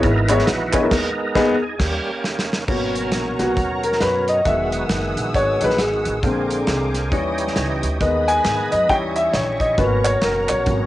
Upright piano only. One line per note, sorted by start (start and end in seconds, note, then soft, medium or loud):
0.29 0.41 B3 medium
0.29 0.41 C#4 medium
0.29 0.41 E4 medium
0.29 0.42 G#4 medium
0.29 0.42 C#5 medium
0.73 0.79 B3 medium
0.73 0.79 C#4 medium
0.73 0.80 E4 medium
0.73 0.80 G#4 medium
0.73 0.80 D#5 medium
0.82 0.91 B3 medium
0.82 0.91 C#4 medium
0.82 0.91 E4 medium
0.82 0.91 G#4 medium
0.82 0.92 A#4 medium
1.35 1.53 B3 loud
1.35 1.54 D#4 loud
1.35 1.54 G#4 loud
2.68 3.35 F#3 soft
2.68 3.36 A#3 soft
2.68 3.36 B3 soft
2.68 3.36 C#4 medium
3.39 3.55 F#3 soft
3.39 3.55 A#3 soft
3.39 3.55 B3 soft
3.39 3.55 C#4 soft
3.39 3.80 F#4 medium
3.84 4.00 A#4 medium
4.01 4.29 B4 medium
4.29 4.47 D#5 medium
4.45 6.19 D#3 medium
4.45 5.59 F#3 soft
4.45 5.60 G#3 soft
4.45 5.37 E5 medium
5.35 5.65 C#5 medium
5.61 5.77 F#3 soft
5.61 5.77 G#3 soft
5.61 5.77 D#4 medium
5.61 5.78 B4 medium
5.80 6.91 G#4 medium
6.23 6.91 D3 soft
6.23 6.91 G#3 soft
6.23 6.91 C4 medium
7.11 7.79 E3 soft
7.11 7.79 G3 soft
7.11 7.80 C#4 medium
8.01 8.68 D#3 soft
8.01 8.68 G#3 soft
8.01 8.69 B3 medium
8.01 8.28 D#5 medium
8.28 8.73 G#5 loud
8.72 8.88 D#5 loud
8.88 9.73 E3 soft
8.88 9.74 G3 soft
8.88 9.74 C#4 medium
8.88 8.96 G5 medium
9.16 9.34 E5 medium
9.33 9.61 C#5 medium
9.61 9.79 D#5 medium
9.77 10.10 F#3 soft
9.77 10.10 A#3 soft
9.77 10.10 B3 soft
9.77 10.10 C#4 medium
9.77 10.06 B4 medium
10.04 10.21 C#5 medium
10.22 10.47 A#4 medium
10.49 10.65 C#5 medium
10.66 10.86 F#3 soft
10.66 10.86 A#3 soft
10.66 10.86 B3 soft
10.66 10.86 C#4 medium